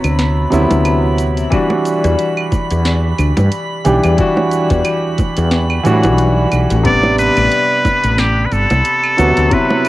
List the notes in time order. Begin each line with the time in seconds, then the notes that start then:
Already playing: C3 F#3 B3 E4 F#4 B5
0.04 D2, closed hi-hat, claves, shaker
0.19 snare, closed hi-hat, shaker
0.50 D2 C3 F#3 B3 E4, closed hi-hat, shaker
0.71 D2, closed hi-hat, high bongo, shaker
0.85 closed hi-hat, claves, shaker
1.18 closed hi-hat, shaker
1.37 closed hi-hat, shaker
1.50 E3 G3 D4 F#4, kick, closed hi-hat, claves, shaker
1.70 high bongo
1.85 closed hi-hat, shaker
2.04 E2, closed hi-hat, shaker
2.19 closed hi-hat, shaker
2.37 claves
2.52 kick, closed hi-hat, high bongo, shaker
2.71 E2, closed hi-hat, shaker
2.85 snare, closed hi-hat, shaker
3.18 D2, closed hi-hat, claves, shaker
3.37 G2, closed hi-hat, high bongo, shaker
3.52 closed hi-hat, shaker
3.85 B1 E3 G3 D4 G4, closed hi-hat, shaker
4.04 E2, closed hi-hat, claves, shaker
4.17 E3 G3 D4 F#4, kick, closed hi-hat, shaker
4.37 high bongo
4.51 closed hi-hat, shaker
4.70 E2, kick, closed hi-hat, shaker
4.85 closed hi-hat, claves, shaker
5.18 kick, closed hi-hat, high bongo, shaker
5.37 E2, closed hi-hat, shaker
5.51 snare, closed hi-hat, shaker
5.70 claves
5.84 A2 E3 G3 D4 F#4, closed hi-hat, shaker
6.03 B1, closed hi-hat, high bongo, shaker
6.18 closed hi-hat, shaker
6.52 B1, closed hi-hat, claves, shaker
6.70 A1, closed hi-hat, shaker
6.84 C3 G3 B3 D4 D5, kick, closed hi-hat, shaker
7.04 high bongo
7.19 B4, closed hi-hat, shaker
7.37 A1, closed hi-hat, claves, shaker
7.52 closed hi-hat, shaker
7.85 kick, closed hi-hat, high bongo, shaker
8.04 A1, closed hi-hat, shaker
8.18 G4, snare, closed hi-hat, claves, shaker
8.46 B4
8.52 G1 A4, closed hi-hat, shaker
8.70 C2, closed hi-hat, high bongo, shaker
8.85 closed hi-hat, shaker
9.04 claves
9.17 D2 C3 F#3 B3 F#4, closed hi-hat, shaker
9.37 D2, closed hi-hat, shaker
9.50 C3 F#3 B3 E4 B4, kick, closed hi-hat, shaker
9.70 high bongo
9.85 closed hi-hat, claves